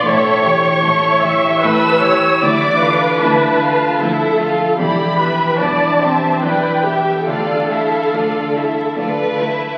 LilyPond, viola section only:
\new Staff \with { instrumentName = "Viola section" } { \time 3/4 \key d \dorian \tempo 4 = 75 cis''4 cis''8 e''8 b'8 cis''8 | d''8 b'4. a'4 | g'8 b'8 d''8 c'8 b'8 g'8 | a'2~ a'8 r8 | }